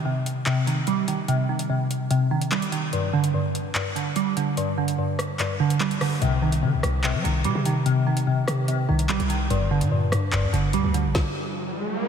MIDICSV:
0, 0, Header, 1, 5, 480
1, 0, Start_track
1, 0, Key_signature, -3, "minor"
1, 0, Tempo, 410959
1, 1501, Time_signature, 4, 2, 24, 8
1, 14112, End_track
2, 0, Start_track
2, 0, Title_t, "Synth pluck"
2, 0, Program_c, 0, 84
2, 0, Note_on_c, 0, 51, 73
2, 61, Note_on_c, 0, 48, 81
2, 528, Note_off_c, 0, 48, 0
2, 542, Note_on_c, 0, 48, 95
2, 767, Note_off_c, 0, 51, 0
2, 781, Note_on_c, 0, 51, 77
2, 1022, Note_on_c, 0, 55, 96
2, 1247, Note_off_c, 0, 51, 0
2, 1261, Note_on_c, 0, 51, 76
2, 1485, Note_off_c, 0, 48, 0
2, 1499, Note_on_c, 0, 48, 99
2, 1727, Note_off_c, 0, 51, 0
2, 1741, Note_on_c, 0, 51, 79
2, 1966, Note_off_c, 0, 48, 0
2, 1980, Note_on_c, 0, 48, 87
2, 2222, Note_off_c, 0, 55, 0
2, 2446, Note_off_c, 0, 48, 0
2, 2460, Note_on_c, 0, 48, 89
2, 2686, Note_off_c, 0, 51, 0
2, 2700, Note_on_c, 0, 51, 85
2, 2941, Note_on_c, 0, 55, 90
2, 3164, Note_off_c, 0, 51, 0
2, 3178, Note_on_c, 0, 51, 76
2, 3419, Note_off_c, 0, 51, 0
2, 3420, Note_off_c, 0, 48, 0
2, 3421, Note_off_c, 0, 55, 0
2, 3421, Note_on_c, 0, 43, 101
2, 3660, Note_on_c, 0, 50, 88
2, 3887, Note_off_c, 0, 43, 0
2, 3901, Note_on_c, 0, 43, 86
2, 4367, Note_off_c, 0, 43, 0
2, 4381, Note_on_c, 0, 43, 89
2, 4607, Note_off_c, 0, 50, 0
2, 4621, Note_on_c, 0, 50, 77
2, 4861, Note_on_c, 0, 55, 96
2, 5087, Note_off_c, 0, 50, 0
2, 5101, Note_on_c, 0, 50, 82
2, 5328, Note_off_c, 0, 43, 0
2, 5342, Note_on_c, 0, 43, 101
2, 5565, Note_off_c, 0, 50, 0
2, 5579, Note_on_c, 0, 50, 82
2, 5807, Note_off_c, 0, 43, 0
2, 5821, Note_on_c, 0, 43, 83
2, 6061, Note_off_c, 0, 55, 0
2, 6287, Note_off_c, 0, 43, 0
2, 6301, Note_on_c, 0, 43, 93
2, 6526, Note_off_c, 0, 50, 0
2, 6540, Note_on_c, 0, 50, 92
2, 6779, Note_on_c, 0, 55, 99
2, 7008, Note_off_c, 0, 50, 0
2, 7022, Note_on_c, 0, 50, 75
2, 7260, Note_off_c, 0, 55, 0
2, 7261, Note_off_c, 0, 43, 0
2, 7261, Note_on_c, 0, 48, 101
2, 7262, Note_off_c, 0, 50, 0
2, 7501, Note_on_c, 0, 51, 77
2, 7727, Note_off_c, 0, 48, 0
2, 7741, Note_on_c, 0, 48, 81
2, 8208, Note_off_c, 0, 48, 0
2, 8222, Note_on_c, 0, 48, 97
2, 8447, Note_off_c, 0, 51, 0
2, 8461, Note_on_c, 0, 51, 78
2, 8702, Note_on_c, 0, 55, 94
2, 8927, Note_off_c, 0, 51, 0
2, 8942, Note_on_c, 0, 51, 77
2, 9165, Note_off_c, 0, 48, 0
2, 9179, Note_on_c, 0, 48, 97
2, 9408, Note_off_c, 0, 51, 0
2, 9422, Note_on_c, 0, 51, 84
2, 9647, Note_off_c, 0, 48, 0
2, 9661, Note_on_c, 0, 48, 86
2, 9901, Note_off_c, 0, 55, 0
2, 10127, Note_off_c, 0, 48, 0
2, 10141, Note_on_c, 0, 48, 91
2, 10366, Note_off_c, 0, 51, 0
2, 10380, Note_on_c, 0, 51, 88
2, 10621, Note_on_c, 0, 55, 91
2, 10844, Note_off_c, 0, 51, 0
2, 10858, Note_on_c, 0, 51, 75
2, 11100, Note_off_c, 0, 51, 0
2, 11101, Note_off_c, 0, 48, 0
2, 11101, Note_off_c, 0, 55, 0
2, 11101, Note_on_c, 0, 43, 101
2, 11341, Note_on_c, 0, 50, 87
2, 11567, Note_off_c, 0, 43, 0
2, 11581, Note_on_c, 0, 43, 85
2, 12048, Note_off_c, 0, 43, 0
2, 12062, Note_on_c, 0, 43, 89
2, 12287, Note_off_c, 0, 50, 0
2, 12301, Note_on_c, 0, 50, 78
2, 12541, Note_on_c, 0, 55, 97
2, 12767, Note_off_c, 0, 50, 0
2, 12781, Note_on_c, 0, 50, 79
2, 13261, Note_off_c, 0, 43, 0
2, 13741, Note_off_c, 0, 55, 0
2, 13981, Note_off_c, 0, 50, 0
2, 14112, End_track
3, 0, Start_track
3, 0, Title_t, "808-style bass"
3, 0, Program_c, 1, 38
3, 7261, Note_on_c, 1, 36, 104
3, 7741, Note_on_c, 1, 51, 100
3, 7758, Note_off_c, 1, 36, 0
3, 7860, Note_on_c, 1, 36, 102
3, 7877, Note_off_c, 1, 51, 0
3, 7974, Note_off_c, 1, 36, 0
3, 7980, Note_on_c, 1, 36, 109
3, 8341, Note_on_c, 1, 55, 100
3, 8358, Note_off_c, 1, 36, 0
3, 8455, Note_off_c, 1, 55, 0
3, 8461, Note_on_c, 1, 36, 105
3, 8701, Note_on_c, 1, 48, 97
3, 8718, Note_off_c, 1, 36, 0
3, 8815, Note_off_c, 1, 48, 0
3, 8821, Note_on_c, 1, 48, 101
3, 9858, Note_off_c, 1, 48, 0
3, 9901, Note_on_c, 1, 48, 101
3, 10362, Note_off_c, 1, 48, 0
3, 10382, Note_on_c, 1, 36, 109
3, 10621, Note_on_c, 1, 34, 96
3, 10638, Note_off_c, 1, 36, 0
3, 10735, Note_off_c, 1, 34, 0
3, 10741, Note_on_c, 1, 36, 99
3, 11087, Note_off_c, 1, 36, 0
3, 11101, Note_on_c, 1, 31, 108
3, 11461, Note_on_c, 1, 46, 102
3, 11478, Note_off_c, 1, 31, 0
3, 11803, Note_off_c, 1, 46, 0
3, 11821, Note_on_c, 1, 43, 110
3, 12061, Note_on_c, 1, 29, 97
3, 12079, Note_off_c, 1, 43, 0
3, 12181, Note_on_c, 1, 43, 102
3, 12199, Note_off_c, 1, 29, 0
3, 12295, Note_off_c, 1, 43, 0
3, 12301, Note_on_c, 1, 31, 105
3, 12542, Note_on_c, 1, 38, 97
3, 12559, Note_off_c, 1, 31, 0
3, 12655, Note_off_c, 1, 38, 0
3, 12662, Note_on_c, 1, 38, 109
3, 12901, Note_on_c, 1, 34, 103
3, 12918, Note_off_c, 1, 38, 0
3, 13015, Note_off_c, 1, 34, 0
3, 14112, End_track
4, 0, Start_track
4, 0, Title_t, "Riser"
4, 0, Program_c, 2, 103
4, 13021, Note_on_c, 2, 60, 87
4, 14112, Note_off_c, 2, 60, 0
4, 14112, End_track
5, 0, Start_track
5, 0, Title_t, "Drums"
5, 306, Note_on_c, 9, 42, 78
5, 423, Note_off_c, 9, 42, 0
5, 540, Note_on_c, 9, 39, 111
5, 657, Note_off_c, 9, 39, 0
5, 787, Note_on_c, 9, 42, 71
5, 904, Note_off_c, 9, 42, 0
5, 1015, Note_on_c, 9, 42, 78
5, 1132, Note_off_c, 9, 42, 0
5, 1260, Note_on_c, 9, 42, 82
5, 1377, Note_off_c, 9, 42, 0
5, 1499, Note_on_c, 9, 42, 76
5, 1616, Note_off_c, 9, 42, 0
5, 1860, Note_on_c, 9, 42, 81
5, 1977, Note_off_c, 9, 42, 0
5, 2227, Note_on_c, 9, 42, 79
5, 2343, Note_off_c, 9, 42, 0
5, 2459, Note_on_c, 9, 42, 82
5, 2576, Note_off_c, 9, 42, 0
5, 2820, Note_on_c, 9, 42, 86
5, 2937, Note_off_c, 9, 42, 0
5, 2940, Note_on_c, 9, 39, 116
5, 3057, Note_off_c, 9, 39, 0
5, 3063, Note_on_c, 9, 42, 73
5, 3180, Note_off_c, 9, 42, 0
5, 3181, Note_on_c, 9, 42, 85
5, 3298, Note_off_c, 9, 42, 0
5, 3420, Note_on_c, 9, 42, 74
5, 3537, Note_off_c, 9, 42, 0
5, 3780, Note_on_c, 9, 42, 79
5, 3897, Note_off_c, 9, 42, 0
5, 4146, Note_on_c, 9, 42, 78
5, 4263, Note_off_c, 9, 42, 0
5, 4380, Note_on_c, 9, 39, 115
5, 4497, Note_off_c, 9, 39, 0
5, 4628, Note_on_c, 9, 42, 73
5, 4745, Note_off_c, 9, 42, 0
5, 4856, Note_on_c, 9, 42, 74
5, 4973, Note_off_c, 9, 42, 0
5, 5102, Note_on_c, 9, 42, 84
5, 5218, Note_off_c, 9, 42, 0
5, 5341, Note_on_c, 9, 42, 73
5, 5457, Note_off_c, 9, 42, 0
5, 5700, Note_on_c, 9, 42, 83
5, 5817, Note_off_c, 9, 42, 0
5, 6060, Note_on_c, 9, 37, 100
5, 6067, Note_on_c, 9, 42, 80
5, 6177, Note_off_c, 9, 37, 0
5, 6184, Note_off_c, 9, 42, 0
5, 6300, Note_on_c, 9, 42, 82
5, 6301, Note_on_c, 9, 39, 69
5, 6417, Note_off_c, 9, 39, 0
5, 6417, Note_off_c, 9, 42, 0
5, 6661, Note_on_c, 9, 42, 85
5, 6778, Note_off_c, 9, 42, 0
5, 6781, Note_on_c, 9, 39, 113
5, 6898, Note_off_c, 9, 39, 0
5, 6904, Note_on_c, 9, 42, 72
5, 7020, Note_on_c, 9, 37, 99
5, 7021, Note_off_c, 9, 42, 0
5, 7022, Note_on_c, 9, 46, 61
5, 7137, Note_off_c, 9, 37, 0
5, 7139, Note_off_c, 9, 46, 0
5, 7261, Note_on_c, 9, 42, 73
5, 7378, Note_off_c, 9, 42, 0
5, 7620, Note_on_c, 9, 42, 82
5, 7737, Note_off_c, 9, 42, 0
5, 7980, Note_on_c, 9, 37, 102
5, 7987, Note_on_c, 9, 42, 81
5, 8097, Note_off_c, 9, 37, 0
5, 8104, Note_off_c, 9, 42, 0
5, 8220, Note_on_c, 9, 39, 116
5, 8337, Note_off_c, 9, 39, 0
5, 8467, Note_on_c, 9, 42, 72
5, 8584, Note_off_c, 9, 42, 0
5, 8696, Note_on_c, 9, 42, 76
5, 8812, Note_off_c, 9, 42, 0
5, 8940, Note_on_c, 9, 42, 85
5, 9057, Note_off_c, 9, 42, 0
5, 9179, Note_on_c, 9, 42, 76
5, 9296, Note_off_c, 9, 42, 0
5, 9539, Note_on_c, 9, 42, 81
5, 9656, Note_off_c, 9, 42, 0
5, 9900, Note_on_c, 9, 37, 98
5, 9906, Note_on_c, 9, 42, 78
5, 10016, Note_off_c, 9, 37, 0
5, 10023, Note_off_c, 9, 42, 0
5, 10140, Note_on_c, 9, 42, 82
5, 10257, Note_off_c, 9, 42, 0
5, 10501, Note_on_c, 9, 42, 88
5, 10618, Note_off_c, 9, 42, 0
5, 10621, Note_on_c, 9, 39, 118
5, 10737, Note_off_c, 9, 39, 0
5, 10744, Note_on_c, 9, 42, 70
5, 10861, Note_off_c, 9, 42, 0
5, 10861, Note_on_c, 9, 42, 85
5, 10978, Note_off_c, 9, 42, 0
5, 11101, Note_on_c, 9, 42, 75
5, 11218, Note_off_c, 9, 42, 0
5, 11460, Note_on_c, 9, 42, 82
5, 11577, Note_off_c, 9, 42, 0
5, 11820, Note_on_c, 9, 37, 99
5, 11827, Note_on_c, 9, 42, 78
5, 11937, Note_off_c, 9, 37, 0
5, 11944, Note_off_c, 9, 42, 0
5, 12061, Note_on_c, 9, 39, 113
5, 12177, Note_off_c, 9, 39, 0
5, 12307, Note_on_c, 9, 42, 70
5, 12424, Note_off_c, 9, 42, 0
5, 12536, Note_on_c, 9, 42, 76
5, 12653, Note_off_c, 9, 42, 0
5, 12782, Note_on_c, 9, 42, 84
5, 12898, Note_off_c, 9, 42, 0
5, 13021, Note_on_c, 9, 36, 110
5, 13022, Note_on_c, 9, 38, 93
5, 13138, Note_off_c, 9, 36, 0
5, 13139, Note_off_c, 9, 38, 0
5, 14112, End_track
0, 0, End_of_file